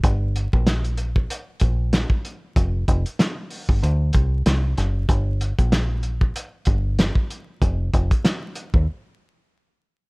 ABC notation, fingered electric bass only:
X:1
M:4/4
L:1/16
Q:"Swing 16ths" 1/4=95
K:Gm
V:1 name="Fingered electric bass" clef=bass
G,,,3 B,,,4- B,,, z2 B,,,3 z3 | F,,,2 F,,, z4 G,,, D,,2 C,,2 C,,2 ^F,,,2 | G,,,3 B,,,4- B,,, z2 G,,,3 z3 | F,,,2 F,,, z4 E,, z8 |]